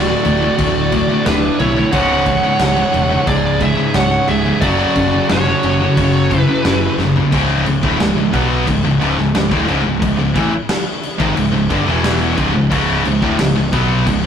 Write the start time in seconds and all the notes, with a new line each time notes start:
Already playing: D1 D2 A2 D3 A3 E4 F#4 D5
0.08 D2 A2
0.23 D1 D2 A2, crash
0.40 D2 A2
0.58 D1 D2 A2, kick, crash
0.92 D2 A2, kick, crash
1.09 D2 A2
1.25 D1 D2 A2 D4 B4, snare, crash
1.59 B1 D2 A2 E4 C#5, crash
1.75 D2 A2
1.92 C#1 C#2 G#2 C#3 G#3 C#5 F#5, kick, crash
2.25 C#2 G#2, kick, crash
2.43 C#2 G#2
2.59 C#1 C#2 G#2, snare, crash
2.75 C#2 G#2
2.92 E1 C#2 G#2, crash
3.09 C#2 G#2
3.26 C#1 C#2 G#2 G#4 D5, kick, crash
3.60 C#2 G#2 G#4 E5, kick, crash
3.77 C#2 G#2
3.94 C#1 C#2 G#2 C#5 F#5, snare, crash
4.11 snare
4.28 C#1 C#2 G#2 G#4 E5, crash
4.45 C#2 G#2
4.61 F#1 F#2 C#3 F#3 F#4 G#4 A4 D5, kick, crash
4.95 F#1 F#2 C#3, kick, crash
5.12 F#2 C#3
5.29 F#1 F#2 C#3 F#4 C#5, snare, crash
5.48 F#2 C#3
5.63 F#1 F#2 C#3, crash
5.81 F#2 C#3
5.97 F#1 F#2 C#3, kick, crash
6.31 F#2 C#3, kick, crash
6.38 E4 B4
6.49 F#2 C#3
6.65 F#1 F#2 C#3, snare, crash
6.98 F#1 F#2 C#3, snare
7.16 F#2 C#3, floor tom
7.32 C#1 C#2 G#2 C#3 E3 E4, kick, crash
7.66 C#1 C#2 G#2, crash
7.83 D1 D2 A2, kick
8.00 C#1 C#2 G#2, snare, crash
8.17 C#1 C#2 G#2
8.33 B1 B2 F#3 B3, kick, crash
8.67 C#1 C#2 G#2, kick, crash
8.85 C#1 C#2 G#2
9.00 C#1 C#2 G#2, crash
9.18 C#1 C#2 G#2, snare
9.35 C#1 C#2 G#2, snare, crash
9.51 D1 D2 A2, kick
9.68 C#1 C#2 G#2, crash
9.84 C#1 C#2 G#2
10.02 C#1 C#2 G#2, kick, crash
10.18 C#1 C#2 G#2
10.35 A1 A2 E3, kick, crash
10.69 snare, crash
11.03 crash
11.18 G#1 G#2 D#3, kick
11.36 C#1 C#2 G#2, crash
11.52 C#1 C#2 G#2
11.69 G1 G2 D3, kick, crash
11.85 E1 E2 B2 E3, snare
12.04 snare, crash
12.37 C#1 C#2 G#2, kick, crash
12.54 C#1 C#2 G#2
12.69 C#1 C#2 G#2 C#3, kick, crash
13.04 C#1 C#2 G#2, crash
13.21 D1 D2 A2, kick
13.39 C#1 C#2 G#2, snare, crash
13.56 C#1 C#2 G#2
13.72 B1 B2 F#3 B3, kick, crash
14.07 C#1 C#2 G#2, kick, crash